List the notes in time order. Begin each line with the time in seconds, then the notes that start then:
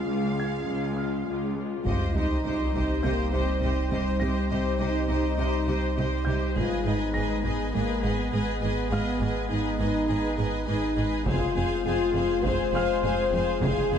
Already playing: G#3 C#4 F4 G#4 F5 F6 G6
0.08 C#2 G#3 F4
0.38 G#3 F4 G#6
0.68 C#2 G#3 F4
0.97 G#3 F4 F6
1.27 C#2 G#3 F4
1.57 G#3 F4
1.84 C2 C3 G3 C4 D#4 F4 G4 C5 D#5, taiko, sub drop
2.13 C2 C3 D#4 G4 C5 D#5
2.45 C2 C3 G4 C5 D#5
2.74 C2 C3 G4 C5 D#5, taiko
3.02 C2 C3 A#3 G4 C5 D#5 G6
3.33 C2 C3 C4 G4 C5 D#5
3.62 C2 C3 G4 C5 D#5
3.91 C2 C3 G4 C5 D#5
4.19 C2 C3 C4 G4 C5 D#5 A#6
4.49 C2 C3 G4 C5 D#5
4.77 C2 C3 D#4 G4 C5 D#5
5.08 C2 C3 G4 C5 D#5
5.37 C2 C3 G4 C5 D#5
5.67 C2 C3 G4 C5 D#5
5.97 C2 C3 G4 C5 D#5
6.25 C2 C3 G4 C5 D#5 G6
6.55 G#1 G#2 G#3 B3 F4 G#4 B4 D#5 G#5, taiko
6.85 G#1 G#2 D#4 G#4 B4 D#5 G#5
7.14 G#1 G#2 G#4 B4 D#5 G#5 A#6
7.44 G#1 G#2 G#4 B4 D#5 G#5, taiko
7.74 G#1 G#2 A#3 G#4 B4 D#5 G#5
8.03 G#1 G#2 B3 G#4 B4 D#5 G#5
8.32 G#1 G#2 G#4 B4 D#5 G#5
8.61 G#1 G#2 G#4 B4 D#5 G#5
8.90 G#1 G#2 B3 G#4 B4 D#5 F5 G#5 F6
9.21 G#1 G#2 G#4 B4 D#5 G#5
9.50 G#1 G#2 D#4 G#4 B4 D#5 G#5
9.78 G#1 G#2 G#4 B4 D#5 G#5
10.08 G#1 G#2 G#4 B4 D#5 G#5
10.37 G#1 G#2 G#4 B4 D#5 G#5
10.66 G#1 G#2 D#4 G#4 B4 D#5 G#5
10.95 G#1 G#2 G#4 B4 D#5 G#5
11.26 F1 F2 G#3 C4 F4 G#4 C5 F5 G#5, taiko
11.55 F1 F2 G#4 C5 F5 G#5
11.85 F1 F2 G#4 C5 F5 G#5
12.14 F1 F2 G#4 C5 F5 G#5
12.43 F1 F2 G#4 C5 F5 G#5, taiko
12.73 F1 F2 G#4 C5 F5 G#5 F6
13.02 F1 F2 G#4 C5 F5 G#5
13.32 F1 F2 G#4 C5 F5 G#5
13.61 F1 F2 G#4 C5 F5 G#5, taiko
13.90 F1 F2 G#4 C5 F5 G#5